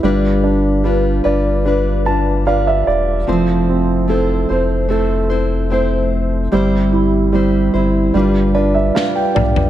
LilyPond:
<<
  \new Staff \with { instrumentName = "Grand piano" } { \time 4/4 \key g \mixolydian \tempo 4 = 74 << { r2 r8 a''8 f''16 e''16 d''8 | r1 | r2 r8 d''16 e''16 f''16 g''8. | } \\ { g8 d'8 b'8 d''8 b'4 d''4 | f8 c'8 a'8 c''8 a'4 c''4 | g8 e'8 g8 e'8 g8 d'8 b'8 d''8 | } >> }
  \new Staff \with { instrumentName = "Steel-string acoustic guitar" } { \time 4/4 \key g \mixolydian <g d' f' b'>4 <g d' f' b'>8 <d' f' b'>8 <g d' f' b'>8 <d' f' b'>8 <g d' f' b'>4 | <f a c' e' c''>4 <a c' e' c''>8 <c' e' c''>8 <a c' e' c''>8 <c' e' c''>8 <a c' e' c''>4 | <g c' e' c''>4 <g c' e' c''>8 <c' e' c''>8 <g d' f' b'>8 <d' f' b'>8 <g d' f' b'>4 | }
  \new Staff \with { instrumentName = "Sub bass" } { \clef bass \time 4/4 \key g \mixolydian g,,4. g,,2 e,,8 | f,,4. f,,2~ f,,8 | g,,4. g,,8 g,,4 r8 b,,8 | }
  \new DrumStaff \with { instrumentName = "Drums" } \drummode { \time 4/4 r4 r4 r4 r4 | r4 r4 r4 r4 | r4 r4 r4 sn8 toml16 tomfh16 | }
>>